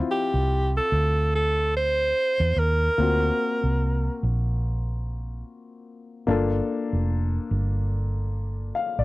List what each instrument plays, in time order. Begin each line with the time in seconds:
Already playing: grand piano F3 C4 E4 F4 F#4
0.11 alto saxophone G4
0.34 fingered electric bass C2
0.77 alto saxophone A4
0.92 fingered electric bass D2
1.35 alto saxophone A4
1.77 alto saxophone C5
2.40 fingered electric bass E2
2.56 fingered electric bass D#2, alto saxophone A#4
2.98 fingered electric bass D2, grand piano A#3 C4 F4
3.02 grand piano F#4
3.64 fingered electric bass C2
4.23 fingered electric bass A#1
6.27 fingered electric bass G1, grand piano A#3 D4 F4 A4
6.93 fingered electric bass F1
7.51 fingered electric bass G1
8.75 grand piano F5
8.99 fingered electric bass A1, grand piano D5